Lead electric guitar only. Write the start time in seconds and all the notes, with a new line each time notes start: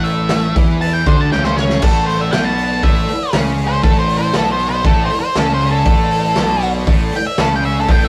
0.04 E5
0.81 A5
0.93 G5
1.07 C5
1.21 A5
1.32 G5
1.44 C5
1.56 C#5
1.83 A4
2.07 C5
2.21 E5
2.31 G5
2.44 A5
2.83 E5
3.68 C5
3.84 A4
3.99 C5
4.18 C5
4.37 A4
4.52 C5
4.69 C5
4.86 A4
5.05 C5
5.20 C5
5.39 A4
5.54 C5
5.71 A4
7.16 G5
7.27 E5
7.40 A4
7.56 G5
7.65 E5
7.80 A4
7.91 G5
8.05 E5